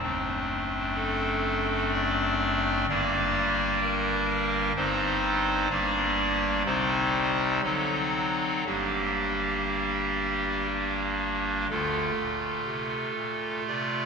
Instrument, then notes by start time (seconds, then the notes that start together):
pipe organ
0.02 F#1 F#2 A3 C4 D4
0.96 A4
1.93 D5
2.89 G1 G2 G3 A#3 D4 D5
3.82 A#4
4.76 G1 G2 G3 C4 D#4 C5
5.70 G1 G2 G3 A#3 D4 D5
6.65 C2 C3 G3 C4 D#4 C5
7.63 D3 F#3 C4 D#4 A4
8.66 G1 G2 G3 A#3 D4 G4
11.70 D2 D3 A3 F4 A4
12.19 A#2
12.67 C3
13.16 A#2
13.67 C3 D5